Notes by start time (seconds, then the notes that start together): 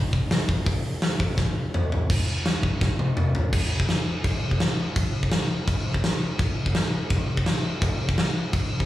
0.13 kick
0.31 snare, open hi-hat
0.49 kick
0.66 kick, open hi-hat
1.02 snare, open hi-hat
1.20 kick
1.37 kick, snare
1.74 mid tom
1.92 floor tom
2.10 kick, crash
2.45 snare, crash
2.63 kick
2.81 kick, snare
2.99 high tom
3.17 mid tom
3.35 floor tom
3.53 kick, crash
3.80 kick
3.89 snare, crash
4.24 kick, crash
4.51 kick
4.60 snare, crash
4.96 kick, crash
5.23 kick
5.31 snare, crash
5.68 kick, crash
5.94 kick
6.04 snare, crash
6.39 kick, crash
6.66 kick
6.75 snare, crash
7.10 kick, crash
7.37 kick
7.46 snare, crash
7.82 kick, crash
8.09 kick
8.18 snare, crash
8.53 kick, crash
8.80 kick